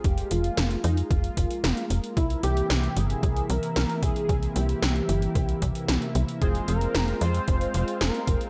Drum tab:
HH |xxxxxxxxxxxxxxxx|xxxxxxxxxxxxxxxx|xxxxxxxxxxxxxxxx|xxxxxxxxxxxxxxxx|
SD |----o-------o---|----o-------o---|----o-------o---|----o-------o---|
BD |o-------o-o-----|o-------o-----o-|o-------o-o-----|o-------o-----o-|